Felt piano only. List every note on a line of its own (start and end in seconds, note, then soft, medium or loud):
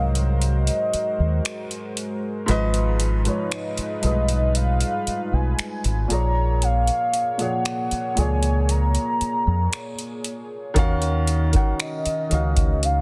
0.00 2.46 G#2 medium
0.00 2.50 F#3 medium
0.00 2.51 A#4 medium
0.00 2.50 C5 loud
0.00 2.50 D#5 medium
2.46 3.11 G#2 loud
2.46 3.12 F3 loud
2.46 3.13 B4 loud
2.51 3.14 D#5 loud
3.24 3.89 G#2 medium
3.24 3.90 F3 medium
3.24 3.90 B4 medium
3.28 3.91 C#5 medium
4.01 4.09 G2 medium
4.01 5.74 F3 medium
4.01 5.75 B4 medium
4.06 5.77 G#2 medium
4.06 5.76 D#5 medium
6.08 7.16 A#2 medium
6.08 7.17 F3 medium
6.08 7.18 G#4 medium
6.13 7.18 C#5 medium
7.38 8.03 A#2 medium
7.38 8.04 F3 medium
7.38 8.04 G#4 medium
7.42 8.05 C#5 medium
8.15 9.87 A#2 medium
8.15 9.88 F3 medium
8.15 9.89 G#4 medium
8.20 9.89 C#5 medium
10.74 11.39 D#3 loud
10.74 11.40 C#4 loud
10.74 11.41 F#4 loud
10.79 11.41 F5 loud
11.52 12.17 D#3 medium
11.52 12.17 C#4 medium
11.52 12.18 F#4 medium
11.56 12.19 F#5 medium
12.29 13.01 D#3 medium
12.29 13.01 C#4 medium
12.29 13.01 F#4 medium
12.34 13.01 F5 medium